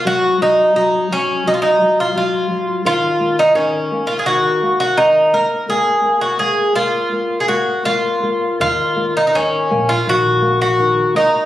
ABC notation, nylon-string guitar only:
X:1
M:4/4
L:1/8
Q:1/4=84
K:Ebdor
V:1 name="Nylon-string guitar" clef=bass
G, G, G, G, G, G, G, G, | E, B, E, B, E, B, E, B, | B, B, B, B, B, B, B, B, | E, B, E, B, E, B, E, B, |]